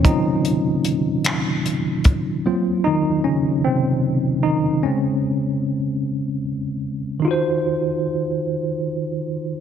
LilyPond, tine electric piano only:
<<
  \new Staff \with { instrumentName = "Tine electric piano" } { \time 6/8 \key ees \dorian \tempo 4. = 50 <ees ees'>2 r4 | r8 <ees ees'>8 <des des'>8 <c c'>4 <ees ees'>8 | des'2 r4 | <ees ees' f' ges' c''>2. | }
  \new Staff \with { instrumentName = "Tine electric piano" } { \time 6/8 \key ees \dorian <ges c' f'>4. r4. | <ges bes c' f'>8 r2 r8 | <des aes c'>8 r2 r8 | r2. | }
>>